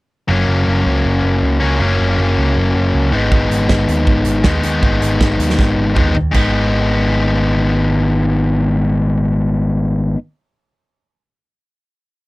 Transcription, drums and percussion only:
0, 0, Header, 1, 2, 480
1, 0, Start_track
1, 0, Key_signature, 5, "minor"
1, 0, Tempo, 378072
1, 367, Time_signature, 4, 2, 24, 8
1, 15583, End_track
2, 0, Start_track
2, 0, Title_t, "Drums"
2, 4212, Note_on_c, 9, 36, 92
2, 4339, Note_off_c, 9, 36, 0
2, 4462, Note_on_c, 9, 42, 66
2, 4589, Note_off_c, 9, 42, 0
2, 4689, Note_on_c, 9, 38, 92
2, 4691, Note_on_c, 9, 36, 95
2, 4815, Note_off_c, 9, 38, 0
2, 4818, Note_off_c, 9, 36, 0
2, 4933, Note_on_c, 9, 42, 66
2, 5060, Note_off_c, 9, 42, 0
2, 5168, Note_on_c, 9, 36, 95
2, 5295, Note_off_c, 9, 36, 0
2, 5393, Note_on_c, 9, 42, 73
2, 5520, Note_off_c, 9, 42, 0
2, 5638, Note_on_c, 9, 38, 94
2, 5645, Note_on_c, 9, 36, 89
2, 5765, Note_off_c, 9, 38, 0
2, 5771, Note_off_c, 9, 36, 0
2, 5884, Note_on_c, 9, 42, 81
2, 6011, Note_off_c, 9, 42, 0
2, 6129, Note_on_c, 9, 36, 98
2, 6256, Note_off_c, 9, 36, 0
2, 6374, Note_on_c, 9, 42, 70
2, 6501, Note_off_c, 9, 42, 0
2, 6611, Note_on_c, 9, 36, 94
2, 6615, Note_on_c, 9, 38, 90
2, 6738, Note_off_c, 9, 36, 0
2, 6742, Note_off_c, 9, 38, 0
2, 6854, Note_on_c, 9, 42, 71
2, 6981, Note_off_c, 9, 42, 0
2, 6982, Note_on_c, 9, 38, 70
2, 7093, Note_on_c, 9, 36, 96
2, 7100, Note_off_c, 9, 38, 0
2, 7100, Note_on_c, 9, 38, 49
2, 7220, Note_off_c, 9, 36, 0
2, 7227, Note_off_c, 9, 38, 0
2, 7568, Note_on_c, 9, 45, 68
2, 7573, Note_on_c, 9, 36, 94
2, 7695, Note_off_c, 9, 45, 0
2, 7700, Note_off_c, 9, 36, 0
2, 7805, Note_on_c, 9, 43, 69
2, 7932, Note_off_c, 9, 43, 0
2, 8053, Note_on_c, 9, 49, 72
2, 8056, Note_on_c, 9, 36, 87
2, 8180, Note_off_c, 9, 49, 0
2, 8183, Note_off_c, 9, 36, 0
2, 15583, End_track
0, 0, End_of_file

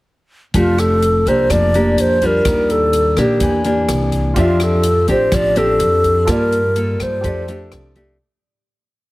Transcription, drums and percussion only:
0, 0, Header, 1, 2, 480
1, 0, Start_track
1, 0, Key_signature, -1, "major"
1, 0, Tempo, 478851
1, 540, Time_signature, 4, 2, 24, 8
1, 9132, End_track
2, 0, Start_track
2, 0, Title_t, "Drums"
2, 541, Note_on_c, 9, 36, 58
2, 542, Note_on_c, 9, 42, 44
2, 641, Note_off_c, 9, 36, 0
2, 642, Note_off_c, 9, 42, 0
2, 786, Note_on_c, 9, 37, 56
2, 786, Note_on_c, 9, 42, 27
2, 886, Note_off_c, 9, 37, 0
2, 886, Note_off_c, 9, 42, 0
2, 1026, Note_on_c, 9, 42, 41
2, 1126, Note_off_c, 9, 42, 0
2, 1262, Note_on_c, 9, 36, 22
2, 1270, Note_on_c, 9, 42, 25
2, 1363, Note_off_c, 9, 36, 0
2, 1370, Note_off_c, 9, 42, 0
2, 1502, Note_on_c, 9, 36, 58
2, 1506, Note_on_c, 9, 37, 55
2, 1506, Note_on_c, 9, 42, 42
2, 1602, Note_off_c, 9, 36, 0
2, 1606, Note_off_c, 9, 37, 0
2, 1606, Note_off_c, 9, 42, 0
2, 1745, Note_on_c, 9, 42, 26
2, 1845, Note_off_c, 9, 42, 0
2, 1985, Note_on_c, 9, 42, 46
2, 2085, Note_off_c, 9, 42, 0
2, 2220, Note_on_c, 9, 36, 21
2, 2222, Note_on_c, 9, 42, 24
2, 2320, Note_off_c, 9, 36, 0
2, 2322, Note_off_c, 9, 42, 0
2, 2457, Note_on_c, 9, 37, 60
2, 2457, Note_on_c, 9, 42, 44
2, 2458, Note_on_c, 9, 36, 61
2, 2557, Note_off_c, 9, 37, 0
2, 2557, Note_off_c, 9, 42, 0
2, 2558, Note_off_c, 9, 36, 0
2, 2703, Note_on_c, 9, 42, 26
2, 2804, Note_off_c, 9, 42, 0
2, 2938, Note_on_c, 9, 42, 41
2, 3038, Note_off_c, 9, 42, 0
2, 3174, Note_on_c, 9, 37, 56
2, 3174, Note_on_c, 9, 42, 25
2, 3175, Note_on_c, 9, 36, 23
2, 3275, Note_off_c, 9, 36, 0
2, 3275, Note_off_c, 9, 37, 0
2, 3275, Note_off_c, 9, 42, 0
2, 3410, Note_on_c, 9, 42, 40
2, 3413, Note_on_c, 9, 36, 56
2, 3510, Note_off_c, 9, 42, 0
2, 3513, Note_off_c, 9, 36, 0
2, 3653, Note_on_c, 9, 42, 26
2, 3753, Note_off_c, 9, 42, 0
2, 3895, Note_on_c, 9, 37, 61
2, 3895, Note_on_c, 9, 42, 44
2, 3995, Note_off_c, 9, 37, 0
2, 3995, Note_off_c, 9, 42, 0
2, 4131, Note_on_c, 9, 42, 23
2, 4132, Note_on_c, 9, 36, 22
2, 4231, Note_off_c, 9, 42, 0
2, 4232, Note_off_c, 9, 36, 0
2, 4370, Note_on_c, 9, 42, 42
2, 4371, Note_on_c, 9, 36, 62
2, 4470, Note_off_c, 9, 42, 0
2, 4471, Note_off_c, 9, 36, 0
2, 4610, Note_on_c, 9, 37, 57
2, 4610, Note_on_c, 9, 42, 27
2, 4710, Note_off_c, 9, 37, 0
2, 4710, Note_off_c, 9, 42, 0
2, 4846, Note_on_c, 9, 42, 42
2, 4946, Note_off_c, 9, 42, 0
2, 5089, Note_on_c, 9, 36, 24
2, 5089, Note_on_c, 9, 42, 28
2, 5189, Note_off_c, 9, 36, 0
2, 5189, Note_off_c, 9, 42, 0
2, 5331, Note_on_c, 9, 36, 59
2, 5331, Note_on_c, 9, 37, 54
2, 5331, Note_on_c, 9, 42, 42
2, 5431, Note_off_c, 9, 36, 0
2, 5432, Note_off_c, 9, 37, 0
2, 5432, Note_off_c, 9, 42, 0
2, 5571, Note_on_c, 9, 42, 28
2, 5672, Note_off_c, 9, 42, 0
2, 5811, Note_on_c, 9, 42, 43
2, 5912, Note_off_c, 9, 42, 0
2, 6052, Note_on_c, 9, 36, 23
2, 6056, Note_on_c, 9, 42, 25
2, 6153, Note_off_c, 9, 36, 0
2, 6156, Note_off_c, 9, 42, 0
2, 6290, Note_on_c, 9, 37, 60
2, 6290, Note_on_c, 9, 42, 46
2, 6291, Note_on_c, 9, 36, 61
2, 6390, Note_off_c, 9, 37, 0
2, 6390, Note_off_c, 9, 42, 0
2, 6391, Note_off_c, 9, 36, 0
2, 6539, Note_on_c, 9, 42, 28
2, 6639, Note_off_c, 9, 42, 0
2, 6774, Note_on_c, 9, 42, 39
2, 6874, Note_off_c, 9, 42, 0
2, 7014, Note_on_c, 9, 36, 23
2, 7017, Note_on_c, 9, 37, 58
2, 7017, Note_on_c, 9, 42, 26
2, 7114, Note_off_c, 9, 36, 0
2, 7117, Note_off_c, 9, 37, 0
2, 7117, Note_off_c, 9, 42, 0
2, 7255, Note_on_c, 9, 36, 57
2, 7259, Note_on_c, 9, 42, 40
2, 7356, Note_off_c, 9, 36, 0
2, 7359, Note_off_c, 9, 42, 0
2, 7500, Note_on_c, 9, 42, 26
2, 7600, Note_off_c, 9, 42, 0
2, 7735, Note_on_c, 9, 37, 58
2, 7735, Note_on_c, 9, 42, 39
2, 7835, Note_off_c, 9, 37, 0
2, 7835, Note_off_c, 9, 42, 0
2, 7974, Note_on_c, 9, 36, 22
2, 7975, Note_on_c, 9, 42, 25
2, 8074, Note_off_c, 9, 36, 0
2, 8075, Note_off_c, 9, 42, 0
2, 9132, End_track
0, 0, End_of_file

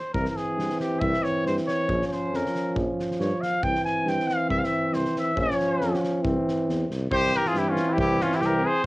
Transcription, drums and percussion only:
0, 0, Header, 1, 2, 480
1, 0, Start_track
1, 0, Tempo, 435098
1, 161, Time_signature, 2, 2, 24, 8
1, 9774, End_track
2, 0, Start_track
2, 0, Title_t, "Drums"
2, 160, Note_on_c, 9, 36, 84
2, 271, Note_off_c, 9, 36, 0
2, 280, Note_on_c, 9, 38, 26
2, 391, Note_off_c, 9, 38, 0
2, 407, Note_on_c, 9, 38, 26
2, 518, Note_off_c, 9, 38, 0
2, 653, Note_on_c, 9, 38, 32
2, 763, Note_off_c, 9, 38, 0
2, 771, Note_on_c, 9, 38, 24
2, 881, Note_off_c, 9, 38, 0
2, 881, Note_on_c, 9, 38, 30
2, 992, Note_off_c, 9, 38, 0
2, 1118, Note_on_c, 9, 36, 105
2, 1229, Note_off_c, 9, 36, 0
2, 1252, Note_on_c, 9, 38, 31
2, 1362, Note_off_c, 9, 38, 0
2, 1367, Note_on_c, 9, 38, 27
2, 1478, Note_off_c, 9, 38, 0
2, 1614, Note_on_c, 9, 38, 31
2, 1724, Note_off_c, 9, 38, 0
2, 1735, Note_on_c, 9, 38, 24
2, 1845, Note_off_c, 9, 38, 0
2, 1854, Note_on_c, 9, 38, 30
2, 1965, Note_off_c, 9, 38, 0
2, 2085, Note_on_c, 9, 36, 88
2, 2195, Note_off_c, 9, 36, 0
2, 2225, Note_on_c, 9, 38, 29
2, 2335, Note_off_c, 9, 38, 0
2, 2336, Note_on_c, 9, 38, 27
2, 2446, Note_off_c, 9, 38, 0
2, 2578, Note_on_c, 9, 38, 32
2, 2688, Note_off_c, 9, 38, 0
2, 2710, Note_on_c, 9, 38, 24
2, 2812, Note_off_c, 9, 38, 0
2, 2812, Note_on_c, 9, 38, 30
2, 2922, Note_off_c, 9, 38, 0
2, 3047, Note_on_c, 9, 36, 102
2, 3158, Note_off_c, 9, 36, 0
2, 3304, Note_on_c, 9, 38, 27
2, 3415, Note_off_c, 9, 38, 0
2, 3433, Note_on_c, 9, 38, 26
2, 3534, Note_off_c, 9, 38, 0
2, 3534, Note_on_c, 9, 38, 34
2, 3644, Note_off_c, 9, 38, 0
2, 3778, Note_on_c, 9, 38, 27
2, 3889, Note_off_c, 9, 38, 0
2, 4005, Note_on_c, 9, 36, 90
2, 4115, Note_off_c, 9, 36, 0
2, 4139, Note_on_c, 9, 38, 23
2, 4250, Note_off_c, 9, 38, 0
2, 4256, Note_on_c, 9, 38, 24
2, 4366, Note_off_c, 9, 38, 0
2, 4495, Note_on_c, 9, 38, 26
2, 4605, Note_off_c, 9, 38, 0
2, 4631, Note_on_c, 9, 38, 19
2, 4733, Note_off_c, 9, 38, 0
2, 4733, Note_on_c, 9, 38, 22
2, 4844, Note_off_c, 9, 38, 0
2, 4969, Note_on_c, 9, 36, 77
2, 5079, Note_off_c, 9, 36, 0
2, 5116, Note_on_c, 9, 38, 28
2, 5226, Note_off_c, 9, 38, 0
2, 5443, Note_on_c, 9, 38, 26
2, 5554, Note_off_c, 9, 38, 0
2, 5572, Note_on_c, 9, 38, 21
2, 5683, Note_off_c, 9, 38, 0
2, 5694, Note_on_c, 9, 38, 30
2, 5804, Note_off_c, 9, 38, 0
2, 5926, Note_on_c, 9, 36, 86
2, 6036, Note_off_c, 9, 36, 0
2, 6074, Note_on_c, 9, 38, 30
2, 6177, Note_off_c, 9, 38, 0
2, 6177, Note_on_c, 9, 38, 27
2, 6287, Note_off_c, 9, 38, 0
2, 6410, Note_on_c, 9, 38, 31
2, 6520, Note_off_c, 9, 38, 0
2, 6554, Note_on_c, 9, 38, 25
2, 6661, Note_off_c, 9, 38, 0
2, 6661, Note_on_c, 9, 38, 23
2, 6772, Note_off_c, 9, 38, 0
2, 6891, Note_on_c, 9, 36, 94
2, 7002, Note_off_c, 9, 36, 0
2, 7153, Note_on_c, 9, 38, 26
2, 7263, Note_off_c, 9, 38, 0
2, 7386, Note_on_c, 9, 38, 27
2, 7497, Note_off_c, 9, 38, 0
2, 7623, Note_on_c, 9, 38, 27
2, 7734, Note_off_c, 9, 38, 0
2, 7849, Note_on_c, 9, 36, 86
2, 7960, Note_off_c, 9, 36, 0
2, 8089, Note_on_c, 9, 38, 31
2, 8200, Note_off_c, 9, 38, 0
2, 8219, Note_on_c, 9, 38, 24
2, 8326, Note_off_c, 9, 38, 0
2, 8326, Note_on_c, 9, 38, 28
2, 8436, Note_off_c, 9, 38, 0
2, 8563, Note_on_c, 9, 38, 27
2, 8674, Note_off_c, 9, 38, 0
2, 8806, Note_on_c, 9, 36, 103
2, 8916, Note_off_c, 9, 36, 0
2, 9050, Note_on_c, 9, 38, 31
2, 9160, Note_off_c, 9, 38, 0
2, 9178, Note_on_c, 9, 38, 25
2, 9284, Note_off_c, 9, 38, 0
2, 9284, Note_on_c, 9, 38, 30
2, 9394, Note_off_c, 9, 38, 0
2, 9774, End_track
0, 0, End_of_file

